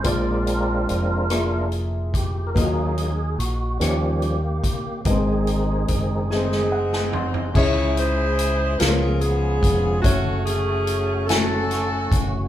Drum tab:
CC |------------|------------|------------|x-----------|
HH |x-x-x-x-x-x-|x-x-x-x-x-x-|x-x-x-------|--x-x-x-x-x-|
SD |------r-----|------r-----|------oo-o--|------o-----|
FT |------------|------------|----------oo|------------|
BD |o---------o-|o---------o-|o---o-------|o---------o-|

CC |------------|
HH |x-x-x-x-x-x-|
SD |------o-o---|
FT |------------|
BD |o---------o-|